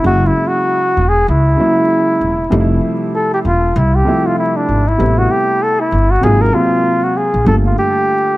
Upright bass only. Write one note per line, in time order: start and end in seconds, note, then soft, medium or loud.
0.04 0.30 F#1 loud
0.97 1.22 E1 medium
1.28 1.53 C#2 medium
2.21 2.46 E1 medium
2.52 2.77 F1 loud
3.45 3.70 E1 medium
3.76 4.01 C2 loud
4.69 4.94 G#1 medium
5.00 5.25 A1 loud
5.92 6.17 G1 medium
6.23 6.48 G#1 loud
7.34 7.44 A#1 medium
7.46 7.72 G1 loud